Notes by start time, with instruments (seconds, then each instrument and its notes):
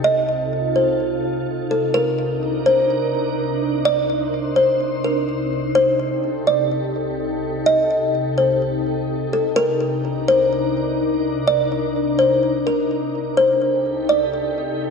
Already playing: ambient pad C2 C3 D#4 A4
0.04 ambient pad F4, kalimba D#5
0.76 kalimba C5
1.71 kalimba A4
1.94 ambient pad C2 C3 D4 D#4 A#4, kalimba A#4
2.66 kalimba C5
3.85 ambient pad C5, kalimba D5
4.56 kalimba C5
5.04 kalimba A#4
5.75 ambient pad G4 A4, kalimba C5
6.47 kalimba D5
7.66 kalimba D#5
8.38 kalimba C5
9.33 kalimba A4
9.56 ambient pad D4 A#4, kalimba A#4
10.28 kalimba C5
11.47 kalimba D5
12.19 kalimba C5
12.67 kalimba A#4
13.37 ambient pad C2 C3 D#4 G4 A4, kalimba C5
14.09 kalimba D5